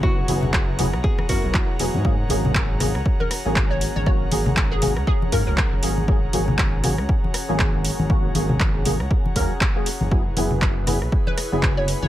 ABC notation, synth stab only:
X:1
M:4/4
L:1/16
Q:"Swing 16ths" 1/4=119
K:G#m
V:1 name="Synth stab"
[F,B,EF]2 [F,B,EG]4 [F,B,EG] z3 [F,B,EA]4 [F,B,EG]2 | [F,A,CG] z [F,A,CG]4 [F,A,CG] z4 [F,A,CG]4- [F,A,CG] | [F,A,CF]2 [F,A,CG]4 [F,A,CG] z3 [F,A,CA]4 [F,A,CG]2 | [F,A,CG] z [F,A,CG]4 [F,A,CG] z4 [F,A,CG]4- [F,A,CG] |
[F,A,CF]2 [F,A,CG]4 [F,A,CG] z3 [F,A,CA] z2 [F,A,CG] z2 | [F,B,EG] z [F,B,EG]4 [F,B,EG] z4 [F,B,EG]4- [F,B,EG] |]